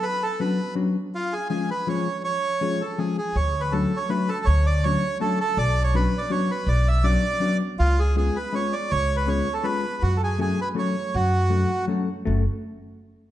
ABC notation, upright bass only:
X:1
M:3/4
L:1/8
Q:1/4=162
K:F#m
V:1 name="Upright bass" clef=bass
z6 | z6 | z6 | D,,4 z2 |
D,,4 z2 | B,,,4 z2 | B,,,4 z2 | C,,4 z2 |
C,,4 z2 | F,,4 z2 | F,,4 z2 | F,,, z4 z |]